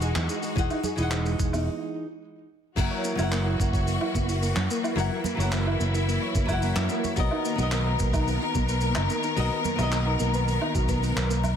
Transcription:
Already playing: fingered electric bass E1, nylon-string guitar E3 D#4 G#4 F#5, string section G#3 D#4 F#4
0.02 synth pluck G#4, shaker
0.15 fingered electric bass E2, synth pluck E4, clap, open hi-hat, low conga, shaker
0.29 synth pluck G#3, shaker
0.42 synth pluck G#3, open hi-hat, shaker
0.56 fingered electric bass E1, nylon-string guitar E3 D#4 G#4 F#5, synth pluck G#3, kick, shaker
0.70 synth pluck D#4, open hi-hat, low woodblock, shaker
0.83 synth pluck G#4, low conga, shaker
0.96 fingered electric bass E1, nylon-string guitar E3 D#4, synth pluck E4, open hi-hat, shaker
1.00 nylon-string guitar G#4 F#5
1.11 synth pluck G#3, clap, shaker
1.25 synth pluck G#3, open hi-hat, shaker
1.39 fingered electric bass E1, synth pluck G#3, kick, shaker
1.53 synth pluck D#4, open hi-hat, high conga, low woodblock, shaker
2.76 fingered electric bass F#1, string section E3 A#3 F#4, nylon-string guitar F#3 E4 A#4 F#5, synth pluck A#3, kick, open hi-hat, crash, shaker
2.91 synth pluck C#5
3.05 synth pluck A#3, shaker
3.15 fingered electric bass F#1, nylon-string guitar F#3 E4, synth pluck E4, open hi-hat, high conga, low woodblock, shaker
3.20 nylon-string guitar A#4 F#5
3.32 synth pluck A#3, clap, open hi-hat, shaker
3.46 synth pluck E4
3.60 fingered electric bass F#1, synth pluck A#3, kick, shaker
3.73 synth pluck C#5, kick, open hi-hat, shaker
3.87 synth pluck A#3, open hi-hat, shaker
4.01 synth pluck E4, open hi-hat, low woodblock
4.15 fingered electric bass F#1, synth pluck A#3, kick, high conga, shaker
4.29 synth pluck E4, open hi-hat, shaker
4.43 synth pluck A#3, open hi-hat, shaker
4.56 fingered electric bass F#2, synth pluck C#5, clap, low conga
4.70 synth pluck A#3, shaker
4.84 synth pluck E4, open hi-hat, low woodblock, shaker
4.96 fingered electric bass F#1, nylon-string guitar F#3 E4 A#4 F#5, synth pluck A#3, string section E4, open hi-hat, shaker
5.11 synth pluck E4
5.24 synth pluck A#3, low conga, shaker
5.35 fingered electric bass F#1, nylon-string guitar F#3 E4
5.39 nylon-string guitar A#4 F#5, synth pluck C#5, open hi-hat, high conga, shaker
5.52 synth pluck A#3, clap, open hi-hat, shaker
5.66 synth pluck E4, low woodblock
5.80 fingered electric bass F#1, synth pluck A#3, shaker
5.94 synth pluck E4, open hi-hat, shaker
6.08 synth pluck A#3, open hi-hat, shaker
6.21 synth pluck C#5, open hi-hat
6.35 fingered electric bass F#1, synth pluck A#3, kick, high conga, shaker
6.45 nylon-string guitar F#3 E4, kick, open hi-hat, low woodblock, shaker
6.49 synth pluck E4, nylon-string guitar A#4 F#5
6.62 synth pluck A#3, open hi-hat, shaker
6.76 fingered electric bass F#2, synth pluck E4, clap
6.89 synth pluck A#3, shaker
7.03 synth pluck C#5, open hi-hat, low conga, shaker
7.16 fingered electric bass B1, string section D#3 B3 A#4, synth pluck A#3, nylon-string guitar B3 F#4 A#4 D#5, kick, open hi-hat, shaker
7.31 synth pluck D#4, low woodblock
7.45 synth pluck A#3, shaker
7.56 fingered electric bass B1, nylon-string guitar B3 F#4, synth pluck D#4, open hi-hat, high conga, shaker
7.60 nylon-string guitar A#4 D#5
7.72 synth pluck A#3, clap, open hi-hat, shaker
7.86 synth pluck B4
7.99 synth pluck A#3, kick, shaker
8.13 synth pluck D#4, kick, open hi-hat, low woodblock, shaker
8.27 synth pluck A#3, open hi-hat, shaker
8.41 synth pluck D#4, open hi-hat
8.55 fingered electric bass B1, synth pluck A#3, kick, high conga, shaker
8.68 synth pluck B4, open hi-hat, shaker
8.81 synth pluck A#3, open hi-hat, shaker
8.95 fingered electric bass F#1, synth pluck D#4, clap, low conga, low woodblock
9.10 synth pluck A#3, shaker
9.23 synth pluck D#4, open hi-hat, shaker
9.36 fingered electric bass B1, synth pluck A#3, nylon-string guitar B3 F#4 A#4 D#5, string section B3, open hi-hat, shaker
9.51 synth pluck B4
9.65 synth pluck A#3, low conga, shaker
9.76 fingered electric bass B1, nylon-string guitar B3 F#4, synth pluck D#4, open hi-hat, high conga, low woodblock, shaker
9.80 nylon-string guitar A#4 D#5
9.92 synth pluck A#3, clap, open hi-hat, shaker
10.06 synth pluck D#4
10.20 fingered electric bass B1, synth pluck A#3, shaker
10.34 synth pluck B4, open hi-hat, shaker
10.47 synth pluck A#3, open hi-hat, shaker
10.61 synth pluck D#4, open hi-hat, low woodblock
10.75 fingered electric bass B1, synth pluck F#4, kick, high conga, shaker
10.88 synth pluck B3, kick, open hi-hat, high conga, shaker
11.02 synth pluck B3, open hi-hat, shaker
11.16 fingered electric bass B1, synth pluck A#4, clap
11.29 synth pluck A#3, shaker
11.44 synth pluck A#3, open hi-hat, low conga, low woodblock, shaker

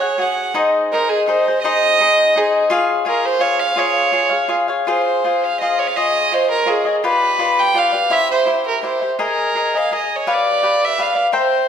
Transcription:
Already playing: violin C#5
0.01 cavaquinho G#4 C#5 F#5
0.18 cavaquinho F#4 G#4 C#5 F#5, violin F#5
0.54 cavaquinho D#4 G#4 C5 D#5
0.93 cavaquinho D#4 G#4 C5 D#5, violin A#4
1.09 violin G#4
1.27 cavaquinho D#4 G#4 C5 D#5, violin C5
1.47 cavaquinho G#4 C5 D#5
1.63 cavaquinho D#4 G#4 C5 D#5, violin D#5
2.00 cavaquinho D#4 G#4 C5 D#5
2.36 cavaquinho D#4 G#4 C5 D#5, violin G#4
2.70 cavaquinho F4 G#4 C#5 F5
3.05 cavaquinho F4 G#4 C#5 F5, violin A#4
3.26 violin C5
3.39 cavaquinho F4 G#4 C#5 F5, violin C#5
3.60 violin F5
3.76 cavaquinho F4 G#4 C#5 F5, violin C#5
4.12 cavaquinho F4 G#4 C#5 F5
4.30 cavaquinho G#4 C#5 F5
4.48 cavaquinho F4 G#4 C#5 F5
4.68 cavaquinho G#4 C#5 F5
4.87 cavaquinho F4 G#4 C5 F5, violin C5
5.24 cavaquinho F4 G#4 C5 F5
5.44 violin F5
5.61 cavaquinho F4 G#4 C5 F5, violin D#5
5.79 violin C#5
5.88 violin F5
5.97 cavaquinho F4 G#4 C#5 D#5, violin D#5
6.32 cavaquinho F4 G#4 C#5 D#5, violin C5
6.51 violin A#4
6.66 cavaquinho F4 G#4 C#5 D#5, violin G#4
6.85 cavaquinho G#4 C#5 D#5
7.04 cavaquinho F4 G4 B4 D5, violin B4
7.39 cavaquinho F4 G4 B4 D5
7.60 violin G5
7.74 cavaquinho F4 G4 B4 D5
7.78 violin F5
7.92 cavaquinho G4 B4 D5
8.10 cavaquinho E4 G4 C5 E5, violin E5
8.31 violin C5
8.46 cavaquinho E4 G4 C5 E5
8.68 violin A#4
8.83 cavaquinho E4 G4 C5 E5, violin C5
9.01 cavaquinho G4 C5 E5
9.19 cavaquinho G#4 A#4 D#5 G#5
9.23 violin A#4
9.55 cavaquinho G#4 A#4 D#5 G#5
9.74 cavaquinho A#4 D#5 G#5, violin F5
9.91 cavaquinho G#4 A#4 D#5 G#5
9.96 violin D#5
10.16 violin C#5
10.27 cavaquinho G4 B4 D5 F5
10.33 violin D5
10.63 cavaquinho G4 B4 D5 F5
10.85 violin E5
10.98 cavaquinho G4 B4 D5 F5
11.02 violin F5
11.15 cavaquinho B4 D5 F5
11.32 cavaquinho A#4 C5 E5 G5
11.37 violin C5

